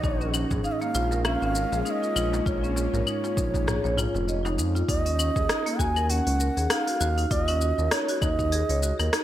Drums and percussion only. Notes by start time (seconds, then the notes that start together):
0.04 kick, darbuka ka, shaker
0.21 shaker
0.34 darbuka ka, darbuka tek, claves, shaker
0.51 kick, darbuka dum, shaker
0.64 shaker
0.81 darbuka ka, shaker
0.95 shaker
1.11 darbuka ka, shaker
1.25 cross-stick, claves, shaker
1.42 shaker
1.55 shaker
1.72 darbuka ka, shaker
1.86 shaker
2.03 shaker
2.16 claves, shaker
2.33 darbuka tek, shaker
2.46 kick, darbuka ka, shaker
2.64 shaker
2.76 darbuka ka, darbuka tek, shaker
2.94 darbuka dum, shaker
3.07 claves, shaker
3.24 darbuka ka, shaker
3.37 kick, shaker
3.54 kick, darbuka ka, darbuka tek, shaker
3.67 cross-stick, darbuka dum, shaker
3.85 shaker
3.98 darbuka tek, darbuka dum, claves, shaker
4.15 darbuka ka, shaker
4.28 shaker
4.45 darbuka tek, shaker
4.59 shaker
4.76 shaker
4.88 kick, open hi-hat, shaker
5.06 open hi-hat, shaker
5.19 claves, shaker
5.36 kick, shaker
5.49 cross-stick, open hi-hat, shaker
5.66 open hi-hat, shaker
5.79 kick, shaker
5.96 claves, shaker
6.10 open hi-hat, shaker
6.27 open hi-hat, shaker
6.40 shaker
6.57 open hi-hat, shaker
6.70 cross-stick, open hi-hat, claves, shaker
6.87 open hi-hat, shaker
7.01 shaker
7.18 open hi-hat, shaker
7.31 kick, open hi-hat, shaker
7.48 open hi-hat, claves, shaker
7.61 shaker
7.79 shaker
7.91 cross-stick, open hi-hat, shaker
8.08 open hi-hat, shaker
8.22 kick, claves, shaker
8.39 kick, shaker
8.52 open hi-hat, shaker
8.69 open hi-hat, shaker
8.83 shaker
8.99 cross-stick, open hi-hat, claves, shaker
9.13 cross-stick, open hi-hat, shaker